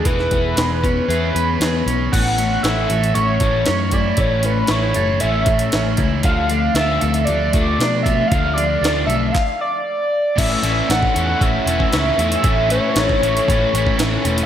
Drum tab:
CC |----------------|x---------------|----------------|----------------|
HH |x-x-x-x-x-x-x-x-|x-x-x-xxx-x-x-x-|x-x-x-x-x-xxx-x-|x-x-x-xxx-x-x-x-|
CP |----------------|----------------|----------------|----------------|
SD |-o--o-------o---|----o-------o---|----o-------o---|----o-------o---|
BD |o-o---o---------|o---------o---o-|o---------o---o-|o---------o---o-|

CC |----------------|x---------------|----------------|
HH |x-x-x-x---------|x-x-x-x-x-x-x-xx|x-x-x-xxx-x-x-xx|
CP |--------x-------|----------------|----------------|
SD |----o-----------|----o-------o---|----o-------o---|
BD |o-------o-------|o----o--o--o----|o----o--o--o----|